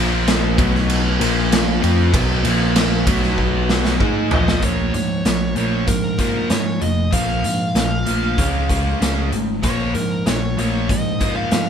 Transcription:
0.00 0.54 A#1 loud
0.00 0.58 A#2 medium
0.00 0.58 F3 medium
0.00 0.58 A#3 loud
0.27 snare loud
0.27 ride medium
0.58 1.16 B1 medium
0.58 1.20 B2 medium
0.58 1.20 F#3 medium
0.58 1.20 B3 medium
0.58 kick loud
0.58 ride medium
0.75 snare soft
0.90 ride loud
1.20 1.79 A#1 loud
1.20 1.82 A#2 medium
1.20 1.81 F3 medium
1.20 1.82 A#3 loud
1.20 ride medium
1.52 snare loud
1.52 ride loud
1.82 2.12 F2 loud
1.82 2.12 F3 medium
1.82 2.13 C4 loud
1.82 2.13 F4 medium
1.82 ride medium
2.13 2.43 B1 medium
2.13 2.43 B2 medium
2.13 2.44 F#3 loud
2.13 2.44 B3 loud
2.13 kick loud
2.13 ride loud
2.44 3.03 A#1 loud
2.44 3.06 A#2 medium
2.44 3.06 F3 medium
2.44 3.06 A#3 loud
2.44 ride medium
2.76 snare loud
2.76 ride loud
3.07 3.96 B1 medium
3.07 3.99 B2 medium
3.07 4.00 F#3 loud
3.07 4.00 B3 medium
3.07 kick loud
3.07 ride medium
3.23 snare soft
3.38 kick medium
3.69 snare medium
3.85 snare medium
4.00 4.29 G#2 medium
4.00 4.30 G#3 medium
4.00 4.31 D#4 loud
4.00 4.31 G#4 loud
4.00 kick medium
4.31 4.61 A#1 loud
4.31 4.61 A#2 medium
4.31 4.62 F3 loud
4.31 4.62 A#3 loud
4.31 4.64 D#5 medium
4.31 floor tom loud
4.48 snare medium
4.62 4.90 A#1 medium
4.62 4.92 A#2 medium
4.62 4.92 F3 loud
4.62 4.93 A#3 medium
4.62 4.93 C#5 medium
4.62 kick loud
4.62 closed hi-hat medium
4.94 5.21 G#2 medium
4.94 5.22 A#2 medium
4.94 5.22 F3 medium
4.94 5.53 C#5 medium
4.94 closed hi-hat medium
5.25 5.52 A#1 medium
5.25 5.53 A#2 medium
5.25 5.54 F3 medium
5.25 snare loud
5.25 closed hi-hat medium
5.55 5.84 A#1 medium
5.55 5.85 A#2 medium
5.55 5.86 F3 medium
5.55 5.86 A#3 medium
5.55 5.86 C#5 medium
5.55 closed hi-hat medium
5.87 6.42 G#2 medium
5.87 6.16 A#2 medium
5.87 6.16 F3 medium
5.87 6.19 A#4 medium
5.87 kick loud
5.87 closed hi-hat medium
6.18 6.48 A#2 medium
6.18 6.49 F3 loud
6.18 6.49 A#3 loud
6.18 6.51 A#4 medium
6.18 kick medium
6.18 closed hi-hat medium
6.49 6.78 G#2 medium
6.49 6.78 A#2 medium
6.49 6.78 F3 medium
6.49 6.83 C#5 medium
6.49 snare loud
6.49 closed hi-hat medium
6.80 7.09 F1 medium
6.80 7.09 A#2 medium
6.80 7.09 F3 medium
6.80 7.11 D#5 loud
6.80 closed hi-hat medium
7.11 7.40 A#1 medium
7.11 7.41 A#2 medium
7.11 7.42 F3 medium
7.11 7.42 A#3 loud
7.11 9.29 F5 medium
7.11 kick loud
7.11 closed hi-hat medium
7.44 7.72 G#2 medium
7.44 7.72 A#2 medium
7.44 7.72 F3 medium
7.44 closed hi-hat medium
7.75 8.02 A#1 medium
7.75 8.04 A#2 medium
7.75 8.04 F3 medium
7.75 snare loud
7.75 closed hi-hat medium
8.06 8.35 A#1 medium
8.06 8.36 A#2 medium
8.06 8.37 F3 medium
8.06 8.37 A#3 medium
8.06 closed hi-hat medium
8.38 8.93 C#2 medium
8.38 8.68 C#3 medium
8.38 8.68 G#3 medium
8.38 8.68 C#4 medium
8.38 kick loud
8.38 closed hi-hat medium
8.69 8.99 C#3 medium
8.69 9.00 G#3 medium
8.69 9.00 C#4 medium
8.69 kick medium
8.69 closed hi-hat medium
9.01 9.29 C#2 medium
9.01 9.30 C#3 medium
9.01 9.31 G#3 medium
9.01 9.31 C#4 loud
9.01 snare loud
9.01 closed hi-hat medium
9.32 9.60 G#1 medium
9.32 9.61 C#3 medium
9.32 9.61 G#3 medium
9.32 closed hi-hat medium
9.63 9.91 A#1 medium
9.63 9.93 A#2 medium
9.63 9.94 F3 medium
9.63 9.94 A#3 loud
9.63 9.94 C#5 medium
9.63 kick loud
9.63 closed hi-hat medium
9.94 10.22 G#2 medium
9.94 10.24 A#2 medium
9.94 10.24 F3 medium
9.94 10.24 A#4 medium
9.94 closed hi-hat medium
10.26 10.54 A#1 medium
10.26 10.55 A#2 medium
10.26 10.55 F3 medium
10.26 10.58 C#5 medium
10.26 snare loud
10.26 closed hi-hat medium
10.58 10.85 A#1 medium
10.58 10.88 A#2 medium
10.58 10.88 F3 medium
10.58 10.88 A#3 medium
10.58 10.91 C#5 medium
10.58 closed hi-hat medium
10.89 11.44 G#2 medium
10.89 11.18 A#2 medium
10.89 11.18 F3 medium
10.89 11.34 D#5 medium
10.89 kick loud
10.89 closed hi-hat medium
11.20 11.50 A#2 medium
11.20 11.51 F3 medium
11.20 11.51 A#3 loud
11.20 kick medium
11.20 closed hi-hat medium
11.36 11.70 F5 medium
11.51 11.70 G#2 medium
11.51 11.70 A#2 medium
11.51 11.70 F3 medium
11.51 snare loud
11.51 closed hi-hat medium

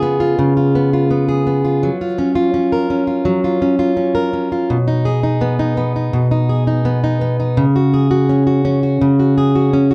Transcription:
0.00 0.37 C#3 medium
0.00 0.74 B3 medium
0.00 0.20 F4 medium
0.00 1.27 G#4 medium
0.20 0.56 F4 medium
0.39 1.90 C#3 medium
0.57 0.93 F4 soft
0.75 1.09 B3 soft
0.93 1.64 F4 medium
1.11 1.45 B3 medium
1.29 1.90 G#4 medium
1.47 1.90 B3 soft
1.65 2.01 F4 medium
1.83 3.25 F#3 medium
2.01 2.34 F4 medium
2.18 2.53 C#4 medium
2.35 3.06 F4 medium
2.54 2.89 C#4 medium
2.72 4.14 A#4 medium
2.90 3.61 C#4 medium
3.07 3.43 F4 soft
3.25 5.08 F#3 medium
3.44 3.78 F4 soft
3.62 3.96 C#4 soft
3.79 4.51 F4 medium
3.97 4.32 C#4 medium
4.15 4.76 A#4 medium
4.33 4.77 C#4 soft
4.52 4.77 F4 soft
4.70 6.12 B2 medium
4.88 5.22 D#4 medium
5.05 6.49 G#4 medium
5.23 5.58 D#4 medium
5.41 5.76 B3 medium
5.59 5.95 D#4 medium
5.77 6.84 B3 medium
5.96 6.30 D#4 soft
6.13 7.64 B2 medium
6.31 6.66 D#4 medium
6.49 7.79 G#4 soft
6.67 7.02 D#4 medium
6.85 7.20 B3 medium
7.04 7.39 D#4 medium
7.21 7.64 B3 medium
7.40 7.65 D#4 medium
7.57 9.00 C#3 medium
7.76 8.10 F#4 medium
7.94 9.36 G#4 medium
8.11 8.46 F#4 medium
8.29 8.64 C#4 medium
8.47 8.83 F#4 medium
8.65 9.72 C#4 medium
8.83 9.19 F#4 medium
9.01 9.94 C#3 medium
9.20 9.55 F#4 medium
9.38 9.94 G#4 medium
9.55 9.90 F#4 medium
9.73 9.94 C#4 medium
9.91 9.94 F#4 medium

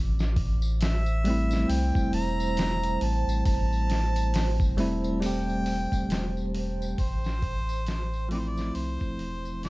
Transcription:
0.00 1.65 A1 loud
0.00 9.69 C5 medium
0.19 snare medium
0.19 tambourine soft
0.36 kick medium
0.36 open hi-hat medium
0.62 tambourine medium
0.81 1.72 E5 medium
0.81 snare loud
0.81 open hi-hat medium
0.81 tambourine medium
1.06 tambourine soft
1.24 4.73 G3 medium
1.24 4.74 A3 medium
1.24 4.75 C4 medium
1.24 open hi-hat medium
1.24 triangle medium
1.30 4.76 E4 loud
1.51 snare soft
1.51 tambourine medium
1.69 1.92 C2 medium
1.69 2.13 G5 loud
1.69 open hi-hat medium
1.69 tambourine medium
1.95 kick medium
1.95 tambourine soft
2.13 2.98 E1 medium
2.13 3.04 A#5 loud
2.13 open hi-hat medium
2.40 tambourine medium
2.57 snare loud
2.57 open hi-hat medium
2.57 tambourine medium
2.83 closed hi-hat soft
2.83 tambourine soft
3.01 3.24 A1 loud
3.01 3.45 A5 loud
3.01 open hi-hat medium
3.27 3.43 A1 medium
3.27 tambourine medium
3.45 4.79 A1 loud
3.45 4.74 A5 loud
3.45 kick loud
3.45 open hi-hat medium
3.45 tambourine medium
3.72 tambourine soft
3.90 snare medium
3.90 open hi-hat medium
4.16 closed hi-hat soft
4.16 tambourine medium
4.34 snare loud
4.34 open hi-hat medium
4.34 tambourine medium
4.60 kick loud
4.60 tambourine soft
4.77 5.87 E1 medium
4.77 5.17 G3 medium
4.77 5.18 A3 medium
4.77 5.18 C4 medium
4.77 5.19 E4 loud
4.77 open hi-hat medium
5.04 tambourine medium
5.04 triangle medium
5.20 6.95 G3 medium
5.20 6.96 A3 medium
5.20 6.97 C4 medium
5.20 6.51 G5 loud
5.20 open hi-hat loud
5.20 tambourine medium
5.26 6.98 G4 medium
5.49 tambourine soft
5.66 open hi-hat medium
5.92 6.95 E1 loud
5.92 kick medium
5.92 tambourine medium
6.10 snare loud
6.10 open hi-hat medium
6.10 tambourine medium
6.37 tambourine soft
6.55 open hi-hat medium
6.82 tambourine medium
6.98 8.71 A1 loud
6.98 8.27 C5 loud
6.98 kick loud
6.98 open hi-hat medium
6.98 tambourine medium
7.24 snare medium
7.24 tambourine soft
7.42 kick medium
7.42 open hi-hat medium
7.69 tambourine medium
7.87 snare loud
7.87 open hi-hat medium
7.87 tambourine medium
8.14 tambourine soft
8.29 9.69 F3 medium
8.29 9.69 A3 medium
8.29 9.69 C4 medium
8.29 8.40 D5 loud
8.29 open hi-hat medium
8.29 triangle medium
8.35 9.69 E4 loud
8.35 8.50 C5 medium
8.48 8.76 D5 loud
8.57 snare soft
8.57 tambourine medium
8.75 8.98 C2 medium
8.75 9.63 C5 loud
8.75 open hi-hat medium
8.75 tambourine medium
9.00 kick loud
9.00 tambourine soft
9.19 9.69 E1 medium
9.19 open hi-hat medium
9.45 tambourine medium
9.63 9.69 D5 loud
9.63 snare loud
9.63 open hi-hat medium
9.63 tambourine medium

